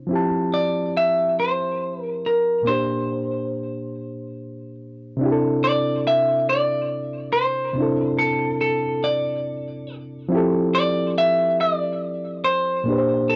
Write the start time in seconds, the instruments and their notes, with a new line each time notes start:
0.07 reed electric piano F3 C4
0.11 reed electric piano E4 G4
0.15 reed electric piano A5
0.54 clean electric guitar D5
0.97 clean electric guitar E5
1.40 clean electric guitar C5
2.02 clean electric guitar A#4
2.26 clean electric guitar A#4
2.63 reed electric piano A#2 A#3
2.67 reed electric piano D4 G4, clean electric guitar C5
2.72 reed electric piano C5
5.17 reed electric piano C3 C4
5.21 reed electric piano D4 E4
5.26 reed electric piano G4
5.32 reed electric piano A4
5.64 clean electric guitar D5
6.07 clean electric guitar E5
6.49 clean electric guitar D5
7.33 clean electric guitar C5
7.73 reed electric piano C3 C4
7.78 reed electric piano D4 E4
7.82 reed electric piano A4
8.19 clean electric guitar A4
8.61 clean electric guitar A4
9.04 clean electric guitar D5
10.29 reed electric piano F3 C4 E4
10.35 reed electric piano G4 A4
10.75 clean electric guitar D5
11.18 clean electric guitar E5
11.61 clean electric guitar D5
12.44 clean electric guitar C5
12.84 reed electric piano A#2 A#3
12.88 reed electric piano D4 G4
12.92 reed electric piano B4
12.98 reed electric piano C5
13.30 clean electric guitar A4